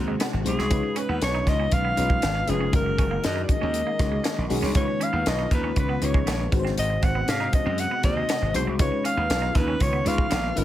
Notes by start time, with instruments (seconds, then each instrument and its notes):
Already playing: slap bass D#2, string machine C3 G#3 F#4, fm electric piano G#3 C4 D#4 F#4 C5
0.08 clean electric guitar G#3
0.20 clean electric guitar B3, snare, closed hi-hat
0.33 slap bass G#1, muted clean electric guitar stroke
0.44 slap bass B1, fm electric piano G#3 C4 D#4 F#4 C5, alto saxophone G#4, closed hi-hat
0.59 slap bass C2, clean electric guitar C4, snare
0.70 slap bass C#2, string machine D#3 B3 F4, fm electric piano G#3 C#4 D#4 F4 B4, kick, closed hi-hat
0.83 muted clean electric guitar stroke
0.96 clean electric guitar C#4, alto saxophone B4, closed hi-hat
1.09 slap bass D#2, clean electric guitar B3
1.22 slap bass B1, alto saxophone C#5, snare, closed hi-hat
1.35 clean electric guitar D#4
1.47 slap bass C#2, alto saxophone D#5, muted clean electric guitar stroke, kick, snare, closed hi-hat
1.60 clean electric guitar C#4
1.71 slap bass B1, alto saxophone F5, kick, closed hi-hat
1.85 clean electric guitar B3
1.96 slap bass B1, fm electric piano G#3 C#4 D#4 F4 B4, muted clean electric guitar stroke, closed hi-hat
2.09 clean electric guitar G#3, kick
2.22 slap bass G#1, clean electric guitar B3, snare, closed hi-hat
2.35 muted clean electric guitar stroke
2.47 slap bass F1, fm electric piano G#3 C#4 D#4 F4 B4, alto saxophone G#4, closed hi-hat
2.61 clean electric guitar C#4
2.72 slap bass F#1, fm electric piano G#3 C#4 D#4 F#4 A#4, string machine A#3 G#4, alto saxophone A#4, kick, closed hi-hat
2.86 muted clean electric guitar stroke
2.98 slap bass F#1, clean electric guitar C#4, kick, closed hi-hat
3.11 clean electric guitar A#3
3.24 slap bass F#2, alto saxophone D#5, snare, closed hi-hat
3.36 clean electric guitar D#4
3.43 alto saxophone D5
3.49 alto saxophone D#5, muted clean electric guitar stroke, kick, closed hi-hat
3.61 slap bass D#2, clean electric guitar C#4
3.74 closed hi-hat
3.87 clean electric guitar A#3
3.99 slap bass C#2, fm electric piano G#3 C#4 D#4 F#4 A#4, muted clean electric guitar stroke, kick, snare, closed hi-hat
4.12 clean electric guitar G#3
4.24 clean electric guitar A#3, snare, closed hi-hat
4.37 slap bass A#1, muted clean electric guitar stroke
4.50 slap bass B1, fm electric piano G#3 C#4 D#4 F#4 G#4, open hi-hat
4.62 slap bass C2, clean electric guitar C#4, snare
4.75 slap bass C#2, fm electric piano G#3 C#4 D#4 F4 B4, string machine B3 F4, alto saxophone C#5, kick, closed hi-hat
4.88 muted clean electric guitar stroke
5.01 clean electric guitar C#4, alto saxophone F5, closed hi-hat
5.13 slap bass D#2, clean electric guitar B3
5.26 slap bass B1, alto saxophone D#5, snare, closed hi-hat
5.39 clean electric guitar D#4
5.51 slap bass D#2, alto saxophone B4, muted clean electric guitar stroke, kick, snare, closed hi-hat
5.64 clean electric guitar C#4
5.76 slap bass C#2, alto saxophone B4, kick, closed hi-hat
5.89 clean electric guitar B3
6.01 slap bass C#2, fm electric piano G#3 C#4 D#4 F4 B4, alto saxophone C#5, muted clean electric guitar stroke, closed hi-hat
6.14 clean electric guitar G#3, kick
6.27 slap bass A#1, clean electric guitar B3, snare, closed hi-hat
6.40 muted clean electric guitar stroke
6.52 slap bass G#1, string machine C3 G#3 F#4, fm electric piano G#3 C4 D#4 F#4 B4, kick, closed hi-hat
6.59 fm electric piano C5
6.65 clean electric guitar C4, snare
6.78 slap bass G#1, alto saxophone D#5, closed hi-hat
6.90 muted clean electric guitar stroke
7.03 slap bass G#1, clean electric guitar C4, alto saxophone F#5, kick, closed hi-hat
7.15 clean electric guitar B3
7.28 slap bass G#2, alto saxophone F5, snare, closed hi-hat
7.40 clean electric guitar D#4
7.53 alto saxophone D#5, muted clean electric guitar stroke, kick, closed hi-hat
7.66 slap bass F#2, clean electric guitar C4
7.78 alto saxophone F#5, closed hi-hat
7.91 clean electric guitar B3
8.03 slap bass D#2, fm electric piano G#3 C4 D#4 F#4 C5, alto saxophone D#5, muted clean electric guitar stroke, kick, snare, closed hi-hat
8.17 clean electric guitar G#3
8.29 clean electric guitar B3, snare, closed hi-hat
8.42 slap bass G#1, muted clean electric guitar stroke
8.54 slap bass B1, fm electric piano G#3 C4 D#4 F#4 C5, alto saxophone C5, closed hi-hat
8.67 slap bass C2, clean electric guitar C4
8.79 slap bass C#2, string machine D#3 B3 F4, fm electric piano G#3 C#4 D#4 F4 B4, alto saxophone C#5, kick, closed hi-hat
8.92 muted clean electric guitar stroke
9.04 clean electric guitar C#4, alto saxophone F5, closed hi-hat
9.17 slap bass D#2, clean electric guitar B3
9.30 slap bass B1, snare, closed hi-hat
9.42 clean electric guitar D#4
9.55 slap bass D#2, alto saxophone B4, muted clean electric guitar stroke, kick, snare, closed hi-hat
9.68 clean electric guitar C#4
9.80 slap bass C#2, alto saxophone C#5, kick, closed hi-hat
9.93 clean electric guitar B3
10.05 slap bass C#2, fm electric piano G#3 C#4 D#4 F4 B4, alto saxophone F5, muted clean electric guitar stroke, snare, closed hi-hat
10.18 clean electric guitar G#3, kick
10.31 slap bass A#1, clean electric guitar B3, snare, closed hi-hat
10.44 muted clean electric guitar stroke
10.56 slap bass G1, fm electric piano G#3 C#4 D#4 F4 B4, alto saxophone A#4, closed hi-hat